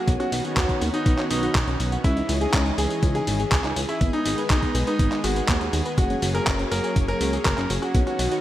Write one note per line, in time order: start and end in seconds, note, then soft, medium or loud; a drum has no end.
0.00 0.11 F#4 medium
0.08 0.16 B1 loud
0.08 2.02 D#3 medium
0.08 0.42 B3 medium
0.08 0.19 B3 medium
0.08 2.02 B3 medium
0.08 3.97 C#4 medium
0.08 0.42 D#4 medium
0.08 0.42 F#4 medium
0.08 2.02 F#4 medium
0.08 0.42 C#5 medium
0.08 kick loud
0.08 closed hi-hat medium
0.08 tambourine soft
0.20 0.29 C#4 loud
0.20 0.44 F#4 loud
0.20 closed hi-hat soft
0.20 tambourine soft
0.32 0.41 B1 loud
0.32 0.41 D#4 medium
0.32 open hi-hat loud
0.32 tambourine medium
0.44 1.28 B3 loud
0.44 1.28 D#4 medium
0.44 1.28 F#4 medium
0.44 0.56 F#4 loud
0.44 1.28 C#5 loud
0.44 closed hi-hat soft
0.44 tambourine soft
0.57 0.66 D#2 medium
0.57 0.68 B3 medium
0.57 0.81 F#4 medium
0.57 kick loud
0.57 clap loud
0.57 closed hi-hat medium
0.57 tambourine soft
0.69 0.78 C#4 loud
0.69 kick medium
0.69 closed hi-hat soft
0.69 tambourine soft
0.81 0.90 D#2 loud
0.81 0.90 D#4 medium
0.81 open hi-hat medium
0.81 tambourine medium
0.94 1.18 D#4 medium
0.94 1.05 F#4 loud
0.94 closed hi-hat soft
0.94 tambourine soft
1.06 1.15 B1 medium
1.06 1.18 B3 medium
1.06 kick loud
1.06 closed hi-hat medium
1.06 tambourine soft
1.18 1.27 C#4 loud
1.18 clap soft
1.18 closed hi-hat soft
1.18 tambourine soft
1.30 1.48 B1 medium
1.30 1.45 B3 medium
1.30 1.94 D#4 loud
1.30 1.39 D#4 medium
1.30 1.44 D#4 medium
1.30 1.45 F#4 medium
1.30 1.45 C#5 loud
1.30 open hi-hat loud
1.30 tambourine medium
1.43 1.55 F#4 loud
1.43 closed hi-hat soft
1.43 tambourine soft
1.55 1.64 B1 loud
1.55 1.67 B3 medium
1.55 kick loud
1.55 clap loud
1.55 closed hi-hat medium
1.55 tambourine soft
1.67 1.76 B1 medium
1.67 1.76 C#4 loud
1.67 closed hi-hat soft
1.67 tambourine soft
1.80 1.97 B1 medium
1.80 1.89 D#4 medium
1.80 open hi-hat medium
1.80 tambourine medium
1.92 2.04 F#4 loud
1.92 closed hi-hat soft
1.92 tambourine soft
2.04 2.22 C#2 loud
2.04 3.99 E3 medium
2.04 2.38 G#3 medium
2.04 2.16 C#4 medium
2.04 2.38 D#4 medium
2.04 2.29 E4 loud
2.04 2.38 E4 medium
2.04 7.90 G#4 medium
2.04 2.38 C#5 medium
2.04 3.99 D#5 medium
2.04 kick loud
2.04 closed hi-hat medium
2.04 tambourine soft
2.17 2.26 D#4 loud
2.17 closed hi-hat soft
2.17 tambourine soft
2.29 2.47 C#2 loud
2.29 2.38 E4 medium
2.29 open hi-hat loud
2.29 tambourine medium
2.41 3.25 G#3 medium
2.41 3.25 D#4 medium
2.41 3.25 E4 medium
2.41 2.65 G#4 medium
2.41 2.53 G#4 loud
2.41 3.25 C#5 loud
2.41 closed hi-hat soft
2.41 tambourine soft
2.54 2.71 C#2 loud
2.54 2.65 C#4 medium
2.54 kick loud
2.54 clap loud
2.54 closed hi-hat medium
2.54 tambourine soft
2.66 2.75 D#4 loud
2.66 closed hi-hat soft
2.66 tambourine soft
2.78 2.87 C#2 medium
2.78 2.87 E4 medium
2.78 3.02 G#4 medium
2.78 open hi-hat medium
2.78 tambourine medium
2.90 3.02 G#4 loud
2.90 closed hi-hat soft
2.90 tambourine soft
3.03 3.20 C#2 medium
3.03 3.14 C#4 medium
3.03 kick loud
3.03 closed hi-hat medium
3.03 tambourine soft
3.15 3.24 D#4 loud
3.15 3.39 G#4 loud
3.15 closed hi-hat soft
3.15 tambourine soft
3.27 3.45 G#1 medium
3.27 3.41 G#3 medium
3.27 3.41 D#4 medium
3.27 3.41 E4 medium
3.27 3.36 E4 medium
3.27 3.41 C#5 loud
3.27 open hi-hat loud
3.27 tambourine medium
3.40 3.51 G#4 loud
3.40 closed hi-hat soft
3.40 tambourine soft
3.52 3.61 C#2 loud
3.52 3.64 C#4 medium
3.52 3.76 G#4 loud
3.52 kick loud
3.52 clap loud
3.52 closed hi-hat medium
3.52 tambourine soft
3.64 3.73 C#2 medium
3.64 3.73 D#4 loud
3.64 clap soft
3.64 closed hi-hat soft
3.64 tambourine soft
3.76 3.85 C#2 loud
3.76 3.85 E4 medium
3.76 open hi-hat medium
3.76 tambourine medium
3.89 4.05 E4 medium
3.89 4.00 G#4 loud
3.89 tambourine soft
4.01 4.10 G#1 loud
4.01 5.96 D#3 medium
4.01 5.96 G#3 medium
4.01 4.35 G#3 medium
4.01 5.96 B3 medium
4.01 4.13 B3 medium
4.01 4.35 B3 medium
4.01 4.35 D#4 medium
4.01 4.35 B4 medium
4.01 kick loud
4.01 closed hi-hat medium
4.01 tambourine soft
4.13 4.22 D#4 loud
4.13 4.38 D#4 loud
4.13 closed hi-hat soft
4.13 tambourine soft
4.25 4.34 G#1 loud
4.25 4.35 G#4 medium
4.25 open hi-hat loud
4.25 tambourine medium
4.38 5.22 G#3 medium
4.38 5.22 B3 medium
4.38 5.22 D#4 medium
4.38 4.50 B4 loud
4.38 5.22 B4 loud
4.38 closed hi-hat soft
4.38 tambourine soft
4.50 4.59 B1 medium
4.50 4.62 B3 medium
4.50 4.75 D#4 loud
4.50 kick loud
4.50 clap loud
4.50 closed hi-hat medium
4.50 tambourine soft
4.62 4.71 D#4 loud
4.62 kick medium
4.62 closed hi-hat soft
4.62 tambourine soft
4.75 4.84 B1 loud
4.75 4.84 G#4 medium
4.75 open hi-hat loud
4.75 tambourine medium
4.87 5.12 D#4 loud
4.87 4.99 B4 loud
4.87 closed hi-hat soft
4.87 tambourine soft
4.99 5.08 G#1 medium
4.99 5.11 B3 medium
4.99 kick loud
4.99 closed hi-hat medium
4.99 tambourine soft
5.12 5.21 D#4 loud
5.12 clap soft
5.12 closed hi-hat soft
5.12 tambourine soft
5.24 5.42 G#1 medium
5.24 5.38 G#3 medium
5.24 5.38 B3 medium
5.24 5.38 D#4 medium
5.24 5.88 F#4 medium
5.24 5.33 G#4 medium
5.24 5.38 B4 loud
5.24 open hi-hat loud
5.24 tambourine medium
5.36 5.48 B4 loud
5.36 closed hi-hat soft
5.36 tambourine soft
5.48 5.57 D#2 loud
5.48 5.60 B3 medium
5.48 kick loud
5.48 clap loud
5.48 closed hi-hat medium
5.48 tambourine soft
5.61 5.70 D#2 medium
5.61 5.70 D#4 loud
5.61 closed hi-hat soft
5.61 tambourine soft
5.73 5.82 D#2 loud
5.73 5.82 G#4 medium
5.73 open hi-hat loud
5.73 tambourine medium
5.85 5.97 B4 loud
5.85 closed hi-hat soft
5.85 tambourine soft
5.98 6.15 F#1 loud
5.98 7.92 F#3 medium
5.98 7.92 A#3 medium
5.98 6.09 A#3 medium
5.98 6.32 A#3 medium
5.98 8.41 C#4 medium
5.98 6.22 F#4 loud
5.98 6.32 F#4 medium
5.98 6.32 G#4 medium
5.98 6.32 C#5 medium
5.98 kick loud
5.98 closed hi-hat loud
5.98 tambourine soft
6.10 6.19 C#4 loud
6.10 closed hi-hat soft
6.10 tambourine soft
6.22 6.40 F#1 loud
6.22 6.31 F#4 medium
6.22 open hi-hat loud
6.22 tambourine medium
6.34 7.18 A#3 loud
6.34 7.18 F#4 medium
6.34 6.46 G#4 loud
6.34 7.18 G#4 medium
6.34 6.59 A#4 medium
6.34 7.18 C#5 loud
6.34 closed hi-hat soft
6.34 tambourine soft
6.47 6.65 F#1 loud
6.47 6.59 A#3 medium
6.47 kick loud
6.47 clap loud
6.47 closed hi-hat loud
6.47 tambourine soft
6.59 6.68 C#4 loud
6.59 closed hi-hat soft
6.59 tambourine soft
6.71 6.80 F#1 medium
6.71 6.80 F#4 medium
6.71 6.96 A#4 medium
6.71 open hi-hat loud
6.71 tambourine medium
6.84 6.96 G#4 loud
6.84 closed hi-hat soft
6.84 tambourine soft
6.96 7.14 F#1 medium
6.96 7.08 A#3 medium
6.96 kick loud
6.96 closed hi-hat loud
6.96 tambourine soft
7.08 7.17 C#4 loud
7.08 7.33 A#4 loud
7.08 closed hi-hat soft
7.08 tambourine soft
7.21 7.38 C#2 medium
7.21 7.35 A#3 medium
7.21 7.35 F#4 medium
7.21 7.30 F#4 medium
7.21 7.35 G#4 medium
7.21 7.35 C#5 loud
7.21 open hi-hat loud
7.21 tambourine medium
7.33 7.45 G#4 loud
7.33 closed hi-hat soft
7.33 tambourine soft
7.45 7.54 F#1 medium
7.45 7.57 A#3 medium
7.45 7.70 A#4 loud
7.45 kick loud
7.45 clap loud
7.45 closed hi-hat loud
7.45 tambourine soft
7.58 7.66 F#1 medium
7.58 7.67 C#4 loud
7.58 clap soft
7.58 closed hi-hat soft
7.58 tambourine soft
7.70 7.79 F#1 loud
7.70 7.79 F#4 medium
7.70 open hi-hat loud
7.70 tambourine medium
7.82 7.98 F#4 medium
7.82 7.94 G#4 loud
7.82 tambourine soft
7.94 8.03 B1 loud
7.94 8.41 D#3 medium
7.94 8.41 B3 medium
7.94 8.28 B3 medium
7.94 8.06 B3 medium
7.94 8.28 D#4 medium
7.94 8.41 F#4 medium
7.94 8.28 F#4 medium
7.94 8.28 C#5 medium
7.94 kick loud
7.94 closed hi-hat loud
7.94 tambourine soft
8.07 8.16 C#4 loud
8.07 8.31 F#4 medium
8.07 closed hi-hat soft
8.07 tambourine soft
8.19 8.28 B1 loud
8.19 8.28 D#4 medium
8.19 open hi-hat loud
8.19 tambourine medium
8.31 8.41 B3 medium
8.31 8.41 D#4 medium
8.31 8.41 F#4 loud
8.31 8.41 F#4 medium
8.31 8.41 C#5 loud
8.31 closed hi-hat soft
8.31 tambourine soft